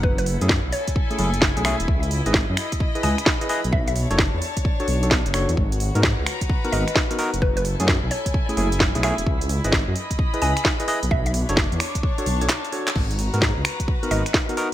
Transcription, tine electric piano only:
X:1
M:4/4
L:1/16
Q:"Swing 16ths" 1/4=130
K:G#phr
V:1 name="Tine electric piano"
z3 [A,CEG] z4 z [A,CEG] [A,CEG] z2 [A,CEG] [A,CEG] z | z3 [EGBd] z4 z [EGBd] [EGBd] z2 [EGBd] [EGBd] z | z3 [=DFAc] z4 z [DFAc] z [DFAc] z2 [DFAc] z | z3 [B,DF^A] z4 z [B,DFA] [B,DFA] z2 [B,DFA] [B,DFA] z |
z3 [A,CEG] z4 z [A,CEG] [A,CEG] z2 [A,CEG] [A,CEG] z | z3 [EGBd] z4 z [EGBd] [EGBd] z2 [EGBd] [EGBd] z | z3 [=DFAc] z4 z [DFAc] z [DFAc] z2 [DFAc] z | z3 [B,DF^A] z4 z [B,DFA] [B,DFA] z2 [B,DFA] [B,DFA] z |]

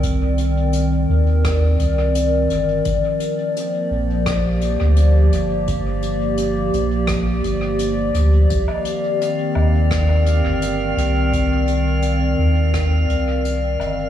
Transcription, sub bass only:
X:1
M:4/4
L:1/16
Q:"Swing 16ths" 1/4=85
K:Cm
V:1 name="Sub bass" clef=bass
C,,6 E,,4 C,,4 G,,,2 | G,,, z4 z B,,,4- B,,, D,,3 G,,,2- | G,,,6 B,,,4 G,,,4 D,,2 | C,, z4 z E,,4- E,, G,,,3 C,,2- |
C,,6 E,,4 C,,4 G,,,2 |]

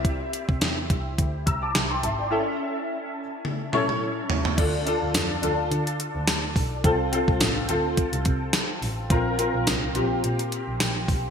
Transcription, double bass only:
X:1
M:4/4
L:1/16
Q:"Swing 16ths" 1/4=106
K:Dm
V:1 name="Double bass" clef=bass
C,,2 z C, E,,2 C,,2 D,,2 C,,2 C,,2 ^G,,,2 | z16 | D,,2 z D,, F,,2 D,,2 D,2 z D,, D,,2 =B,,,2 | C,,2 z C,, A,,,2 D,,2 z C,, C,2 z2 A,,,2 |
B,,,2 z B,,, C,,2 B,,,2 B,,2 z B,,, B,,,2 =B,,,2 |]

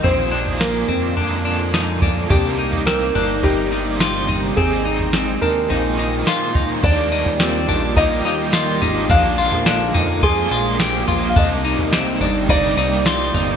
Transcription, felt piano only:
X:1
M:4/4
L:1/16
Q:1/4=106
K:Eb
V:1 name="Felt piano"
c4 B8 z4 | G4 B4 G8 | A6 B8 z2 | d8 e8 |
f8 A6 z3/2 f/2 | e8 d8 |]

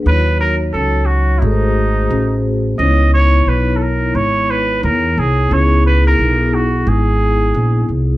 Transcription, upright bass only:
X:1
M:4/4
L:1/8
Q:"Swing 16ths" 1/4=88
K:C#m
V:1 name="Upright bass" clef=bass
D,,2 C,,2 G,,,2 A,,,2 | C,,2 B,,,2 G,,,2 E,, ^B,,, | C,,2 B,,,2 G,,,2 ^A,,, ^B,,, |]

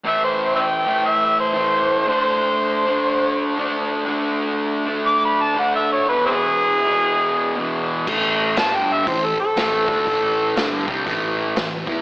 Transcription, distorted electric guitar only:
X:1
M:4/4
L:1/8
Q:"Swing" 1/4=120
K:D
V:1 name="Distorted electric guitar" clef=bass
[A,,E,A,]3 [A,,E,A,]3 [A,,E,A,]2 | [D,A,D]3 [D,A,D]3 [D,A,D]2 | [D,A,D]3 [D,A,D]3 [D,A,D]2 | [E,,B,,E,]3 [E,,B,,E,]3 [E,,B,,E,]2 |
[A,,E,A,]2 [G,,D,G,]2 [A,,E,] z [A,,E,A,] [D,A,D] | [A,,E,A,]2 [G,,D,G,] [=C,G,=C] [A,,E,A,]2 [A,,E,] [E,B,E] |]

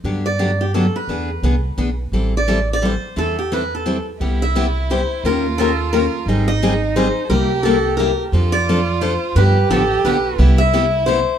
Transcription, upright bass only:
X:1
M:3/4
L:1/8
Q:"Swing" 1/4=174
K:Am
V:1 name="Upright bass" clef=bass
G,,6 | E,,2 C,,2 B,,,2 | A,,,6 | E,,6 |
[K:C] C,,6 | _E,,6 | _A,,,6 | C,,6 |
F,,6 | G,,2 A,,,2 B,,,2 | C,,6 |]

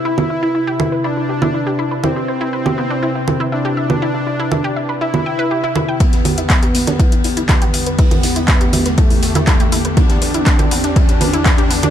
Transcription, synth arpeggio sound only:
X:1
M:4/4
L:1/16
Q:1/4=121
K:Em
V:1 name="Synth arpeggio sound"
E E E E E G e B E E G E E G E B | E G c E B G B, D E E E E E G e B | E E E E E G e B E E g B G E E g | E G B E B G B, D E E E E E G e B |
E E E E E G e B E E G E E G E B | E G B E B G B, D E G B E B G B, D |]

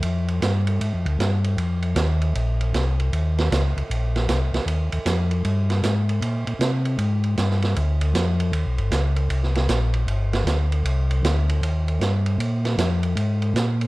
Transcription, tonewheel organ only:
X:1
M:4/4
L:1/8
Q:"Swing" 1/4=155
K:Bbmix
V:1 name="Tonewheel organ" clef=bass
F,,2 G,,2 (3A,, F,, D,, G,,2 | F,,2 E,,2 B,,,2 C,,2 | E,,2 _D,, D,, B,,,2 C,, C,, | E,, E,, F,,2 G,,2 A,,2 |
B,, B,, C,2 A,,2 G,,2 | D,,2 F,,2 (3^D,, =B,,, G,,, _D,,2 | C,,2 B,,,2 G,,,2 D,,2 | C,,2 D,,2 E,,2 G,,2 |
B,,2 F,,2 A,,2 B,,2 |]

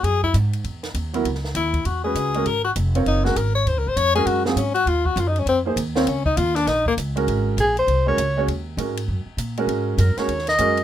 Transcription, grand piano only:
X:1
M:4/4
L:1/8
Q:"Swing" 1/4=199
K:G#m
V:1 name="Grand piano"
z6 z [F,B,EA] | z4 z [G,CFB]2 [G,CFA] | z3 [^B,^EAc]2 [G,CFA] z2 | z3 [G,CFA]2 [F,^B,^EG] z2 |
z4 z [A,DG^B] z [^B,^EAc] | z6 z [G,CFA]- | [K:Abmix] [^G,^C^F^A]2 z3 [_A,D_GB] z [A,DGd] | z2 [A,DGB] z4 [A,DGB]- |
[A,DGB]2 z [A,DGB] z2 [A,DGB] z |]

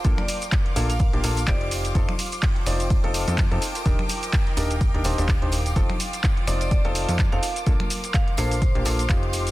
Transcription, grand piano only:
X:1
M:4/4
L:1/16
Q:"Swing 16ths" 1/4=126
K:Bb
V:1 name="Grand piano"
[B,DFA] z4 z [B,DFA] z2 [B,DFG] [B,DFA] z [CEFG]4 | [CEFA] z4 z [CEFd]3 [CEFA]2 [CEFA] z [CEFA] z2 | [DEGB] z4 z [DEGB] z2 [DEGB] [DEGc] [DEGc] z [DEGc] z2 | [CEFA] z4 z [CEFd]3 [CEFA]2 [CEFA] z [CEFA] z2 |
[B,DFA] z4 z [B,DFA] z2 [B,DFG] [B,DFA] z [CEFG]4 |]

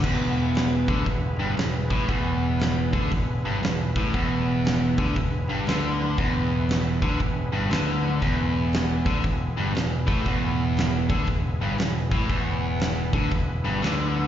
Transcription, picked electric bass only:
X:1
M:4/4
L:1/8
Q:"Swing" 1/4=118
K:Emix
V:1 name="Picked electric bass" clef=bass
E,,,3 D,, E,,, =G,,, E,,, A,,, | E,,,3 D,, E,,, =G,,, E,,, A,,, | E,,,3 D,, E,,, =G,,, D,,2 | E,,,3 D,, E,,, =G,,, D,,2 |
E,,,3 D,, E,,, =G,,, E,,, A,,, | E,,,3 D,, E,,, =G,,, E,,, A,,, | E,,,3 D,, E,,, =G,,, D,,2 |]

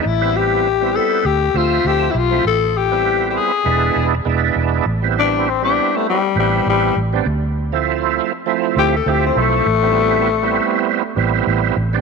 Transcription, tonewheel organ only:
X:1
M:4/4
L:1/16
Q:"Swing 16ths" 1/4=100
K:Am
V:1 name="Tonewheel organ"
z [G,B,CE]3 z [G,B,CE]3 z2 [F,A,Ce]4 z [F,A,CE] | z3 [G,B,CE]4 z [^G,B,DE]3 z [G,B,DE]4 | z [G,B,CE]3 z [G,B,CE]4 z [G,B,CE]4 z [G,B,CD] | z3 [F,A,CE]4 z [F,A,CE]3 z [F,A,CE]4 |
z [G,B,CE]3 z [G,B,CE]4 z [G,B,CE]4 z [G,B,CD] |]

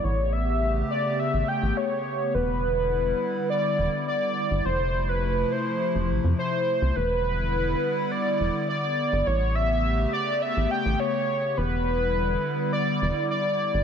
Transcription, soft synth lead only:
X:1
M:4/4
L:1/16
Q:1/4=104
K:Ephr
V:1 name="Soft synth lead"
^c2 e4 d2 e2 g2 c4 | B8 d4 d4 | c3 B3 c4 z2 c4 | B8 d4 d4 |
^c2 e4 d2 e2 g2 c4 | B8 d4 d4 |]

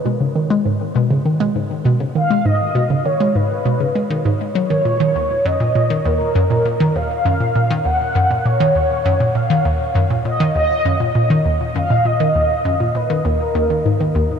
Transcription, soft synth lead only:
X:1
M:4/4
L:1/8
Q:1/4=100
K:D#m
V:1 name="Soft synth lead"
z6 z e | d2 c B3 z c- | c2 d2 A3 e- | e2 f2 c3 e- |
e z d d3 z e | d3 B A3 z |]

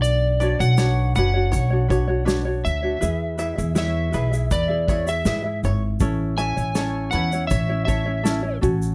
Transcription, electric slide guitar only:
X:1
M:4/4
L:1/16
Q:1/4=80
K:A
V:1 name="Electric slide guitar"
d3 f3 f6 z2 e2- | e4 e4 d3 e3 z2 | z2 g4 f2 e2 e4 z2 |]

